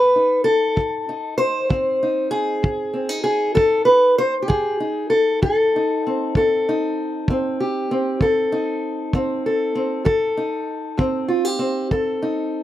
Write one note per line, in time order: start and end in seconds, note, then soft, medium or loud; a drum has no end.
0.00 0.41 F2 medium
0.00 0.15 C4 medium
0.00 0.44 B4 medium
0.16 1.08 D#4 soft
0.44 1.37 A4 medium
0.76 1.33 F2 medium
0.76 kick medium
1.09 2.02 D#4 soft
1.38 2.30 C5 loud
1.69 2.26 F2 medium
1.69 2.94 C4 soft
1.69 kick medium
2.03 2.66 D#4 soft
2.31 3.22 G#4 medium
2.63 3.19 F2 medium
2.63 kick medium
2.94 3.09 C4 soft
3.09 4.42 D#4 soft
3.24 3.55 G#4 medium
3.54 4.11 F2 medium
3.54 3.85 A4 medium
3.54 kick medium
3.85 4.17 B4 medium
4.18 4.33 C5 medium
4.42 4.80 G4 medium
4.48 5.05 F2 medium
4.48 5.09 G#4 medium
4.48 kick medium
4.80 5.76 D#4 soft
5.10 5.41 A4 medium
5.42 5.98 F2 medium
5.42 6.35 A4 medium
5.42 kick medium
5.76 6.39 D#4 soft
6.07 7.30 C4 soft
6.35 6.92 F2 medium
6.35 7.60 A4 medium
6.35 kick medium
6.69 8.51 D#4 medium
7.28 7.84 F2 medium
7.28 7.91 C4 medium
7.28 kick medium
7.60 8.22 G4 medium
7.91 9.13 C4 medium
8.21 8.77 F2 medium
8.21 9.45 A4 medium
8.21 kick medium
8.52 10.03 D#4 medium
9.13 9.69 F2 medium
9.13 9.74 C4 medium
9.13 kick medium
9.46 10.03 A4 medium
9.75 10.03 C4 soft
10.05 10.61 F2 medium
10.05 11.28 A4 medium
10.05 kick medium
10.37 12.21 D#4 medium
10.97 11.54 F2 medium
10.97 11.58 C4 medium
10.97 kick medium
11.28 11.45 F4 medium
11.45 11.91 G4 soft
11.59 12.63 C4 medium
11.91 12.47 F2 medium
11.91 12.63 A4 medium
11.91 kick medium
12.22 12.63 D#4 medium